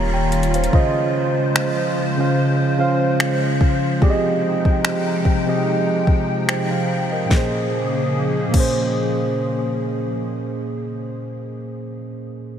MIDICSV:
0, 0, Header, 1, 5, 480
1, 0, Start_track
1, 0, Tempo, 821918
1, 427, Time_signature, 4, 2, 24, 8
1, 7352, End_track
2, 0, Start_track
2, 0, Title_t, "Tine electric piano"
2, 0, Program_c, 0, 4
2, 0, Control_c, 0, 64, 127
2, 0, Note_on_c, 0, 51, 79
2, 0, Note_on_c, 0, 58, 73
2, 0, Note_on_c, 0, 65, 70
2, 0, Note_on_c, 0, 67, 72
2, 0, Note_on_c, 0, 73, 88
2, 0, Note_on_c, 0, 77, 52
2, 0, Note_on_c, 0, 82, 64
2, 72, Note_off_c, 0, 82, 0
2, 73, Note_off_c, 0, 77, 0
2, 80, Note_on_c, 0, 79, 64
2, 83, Note_off_c, 0, 73, 0
2, 83, Note_on_c, 0, 73, 57
2, 306, Note_off_c, 0, 79, 0
2, 308, Note_off_c, 0, 73, 0
2, 318, Note_on_c, 0, 77, 60
2, 322, Note_on_c, 0, 72, 53
2, 420, Note_on_c, 0, 49, 103
2, 424, Note_on_c, 0, 61, 90
2, 426, Note_off_c, 0, 72, 0
2, 428, Note_off_c, 0, 65, 0
2, 428, Note_on_c, 0, 65, 95
2, 433, Note_on_c, 0, 72, 92
2, 435, Control_c, 0, 64, 0
2, 436, Note_off_c, 0, 51, 0
2, 437, Note_off_c, 0, 67, 0
2, 437, Note_on_c, 0, 75, 109
2, 439, Note_off_c, 0, 58, 0
2, 529, Control_c, 0, 64, 127
2, 546, Note_off_c, 0, 77, 0
2, 969, Note_off_c, 0, 49, 0
2, 971, Note_off_c, 0, 61, 0
2, 973, Note_off_c, 0, 65, 0
2, 976, Note_off_c, 0, 72, 0
2, 978, Note_off_c, 0, 75, 0
2, 1270, Note_on_c, 0, 49, 77
2, 1274, Note_on_c, 0, 61, 73
2, 1278, Note_on_c, 0, 65, 66
2, 1282, Note_on_c, 0, 72, 70
2, 1287, Note_on_c, 0, 77, 81
2, 1504, Note_off_c, 0, 49, 0
2, 1506, Note_off_c, 0, 61, 0
2, 1508, Note_off_c, 0, 65, 0
2, 1510, Note_off_c, 0, 72, 0
2, 1513, Note_off_c, 0, 77, 0
2, 1621, Note_on_c, 0, 49, 81
2, 1625, Note_on_c, 0, 61, 78
2, 1629, Note_on_c, 0, 65, 73
2, 1634, Note_on_c, 0, 72, 73
2, 1638, Note_on_c, 0, 77, 87
2, 2089, Note_off_c, 0, 49, 0
2, 2091, Note_off_c, 0, 61, 0
2, 2093, Note_off_c, 0, 65, 0
2, 2095, Note_off_c, 0, 72, 0
2, 2097, Note_off_c, 0, 77, 0
2, 2339, Note_on_c, 0, 53, 98
2, 2344, Note_on_c, 0, 60, 89
2, 2348, Note_on_c, 0, 67, 88
2, 2352, Note_on_c, 0, 68, 90
2, 2355, Control_c, 0, 64, 0
2, 2356, Note_on_c, 0, 74, 88
2, 2393, Note_off_c, 0, 74, 0
2, 2394, Note_on_c, 0, 75, 116
2, 2451, Control_c, 0, 64, 127
2, 2888, Note_off_c, 0, 53, 0
2, 2891, Note_off_c, 0, 60, 0
2, 2893, Note_off_c, 0, 67, 0
2, 2895, Note_off_c, 0, 68, 0
2, 2916, Note_off_c, 0, 75, 0
2, 3189, Note_on_c, 0, 53, 70
2, 3194, Note_on_c, 0, 60, 68
2, 3198, Note_on_c, 0, 67, 67
2, 3202, Note_on_c, 0, 68, 67
2, 3207, Note_on_c, 0, 75, 86
2, 3787, Note_on_c, 0, 79, 59
2, 3791, Note_on_c, 0, 72, 49
2, 3792, Note_off_c, 0, 75, 0
2, 3803, Note_off_c, 0, 53, 0
2, 3805, Note_off_c, 0, 60, 0
2, 3807, Note_off_c, 0, 67, 0
2, 3809, Note_off_c, 0, 68, 0
2, 3910, Note_off_c, 0, 79, 0
2, 3912, Note_off_c, 0, 72, 0
2, 3917, Note_on_c, 0, 77, 64
2, 3921, Note_on_c, 0, 72, 53
2, 4145, Note_off_c, 0, 77, 0
2, 4147, Note_off_c, 0, 72, 0
2, 4158, Note_on_c, 0, 75, 59
2, 4162, Note_on_c, 0, 70, 48
2, 4236, Note_on_c, 0, 46, 69
2, 4253, Note_on_c, 0, 58, 64
2, 4270, Note_on_c, 0, 61, 64
2, 4274, Control_c, 0, 64, 0
2, 4286, Note_on_c, 0, 68, 63
2, 4304, Note_on_c, 0, 72, 82
2, 4372, Control_c, 0, 64, 127
2, 4386, Note_off_c, 0, 75, 0
2, 4388, Note_off_c, 0, 70, 0
2, 4391, Note_off_c, 0, 46, 0
2, 4400, Note_off_c, 0, 58, 0
2, 4410, Note_off_c, 0, 61, 0
2, 4419, Note_off_c, 0, 68, 0
2, 4428, Note_off_c, 0, 72, 0
2, 4953, Note_on_c, 0, 46, 78
2, 4971, Note_on_c, 0, 58, 73
2, 4988, Note_on_c, 0, 61, 70
2, 5005, Note_on_c, 0, 68, 73
2, 5022, Note_on_c, 0, 72, 91
2, 6955, Note_off_c, 0, 46, 0
2, 6972, Note_off_c, 0, 58, 0
2, 6990, Note_off_c, 0, 61, 0
2, 7007, Note_off_c, 0, 68, 0
2, 7024, Note_off_c, 0, 72, 0
2, 7352, End_track
3, 0, Start_track
3, 0, Title_t, "Analog synth pad"
3, 0, Program_c, 1, 89
3, 0, Note_on_c, 1, 51, 77
3, 0, Note_on_c, 1, 55, 70
3, 0, Note_on_c, 1, 58, 72
3, 0, Note_on_c, 1, 61, 69
3, 0, Note_on_c, 1, 65, 82
3, 407, Note_off_c, 1, 51, 0
3, 407, Note_off_c, 1, 55, 0
3, 407, Note_off_c, 1, 58, 0
3, 407, Note_off_c, 1, 61, 0
3, 426, Note_on_c, 1, 72, 72
3, 427, Note_on_c, 1, 49, 76
3, 427, Note_on_c, 1, 53, 68
3, 427, Note_on_c, 1, 56, 69
3, 2323, Note_off_c, 1, 65, 0
3, 2327, Note_off_c, 1, 72, 0
3, 2328, Note_off_c, 1, 49, 0
3, 2346, Note_on_c, 1, 79, 83
3, 2347, Note_on_c, 1, 48, 76
3, 2347, Note_on_c, 1, 63, 71
3, 4244, Note_off_c, 1, 53, 0
3, 4244, Note_off_c, 1, 56, 0
3, 4247, Note_off_c, 1, 79, 0
3, 4248, Note_off_c, 1, 48, 0
3, 4248, Note_off_c, 1, 63, 0
3, 4265, Note_on_c, 1, 49, 73
3, 4265, Note_on_c, 1, 53, 71
3, 4265, Note_on_c, 1, 58, 71
3, 4265, Note_on_c, 1, 68, 82
3, 4266, Note_on_c, 1, 61, 69
3, 6266, Note_off_c, 1, 58, 0
3, 6267, Note_off_c, 1, 49, 0
3, 6267, Note_off_c, 1, 53, 0
3, 6267, Note_off_c, 1, 61, 0
3, 6267, Note_off_c, 1, 68, 0
3, 7352, End_track
4, 0, Start_track
4, 0, Title_t, "808-style bass"
4, 0, Program_c, 2, 38
4, 0, Note_on_c, 2, 27, 95
4, 405, Note_off_c, 2, 27, 0
4, 7352, End_track
5, 0, Start_track
5, 0, Title_t, "Drums"
5, 187, Note_on_c, 9, 42, 51
5, 246, Note_off_c, 9, 42, 0
5, 252, Note_on_c, 9, 42, 51
5, 310, Note_off_c, 9, 42, 0
5, 316, Note_on_c, 9, 42, 54
5, 372, Note_off_c, 9, 42, 0
5, 372, Note_on_c, 9, 42, 55
5, 427, Note_on_c, 9, 36, 107
5, 430, Note_off_c, 9, 42, 0
5, 485, Note_off_c, 9, 36, 0
5, 909, Note_on_c, 9, 26, 108
5, 968, Note_off_c, 9, 26, 0
5, 1869, Note_on_c, 9, 26, 116
5, 1927, Note_off_c, 9, 26, 0
5, 2107, Note_on_c, 9, 36, 93
5, 2165, Note_off_c, 9, 36, 0
5, 2347, Note_on_c, 9, 36, 107
5, 2405, Note_off_c, 9, 36, 0
5, 2716, Note_on_c, 9, 36, 79
5, 2775, Note_off_c, 9, 36, 0
5, 2830, Note_on_c, 9, 26, 111
5, 2888, Note_off_c, 9, 26, 0
5, 3067, Note_on_c, 9, 36, 87
5, 3125, Note_off_c, 9, 36, 0
5, 3547, Note_on_c, 9, 36, 92
5, 3605, Note_off_c, 9, 36, 0
5, 3788, Note_on_c, 9, 26, 109
5, 3847, Note_off_c, 9, 26, 0
5, 4266, Note_on_c, 9, 36, 93
5, 4269, Note_on_c, 9, 38, 80
5, 4325, Note_off_c, 9, 36, 0
5, 4327, Note_off_c, 9, 38, 0
5, 4986, Note_on_c, 9, 49, 83
5, 4987, Note_on_c, 9, 36, 96
5, 5045, Note_off_c, 9, 36, 0
5, 5045, Note_off_c, 9, 49, 0
5, 7352, End_track
0, 0, End_of_file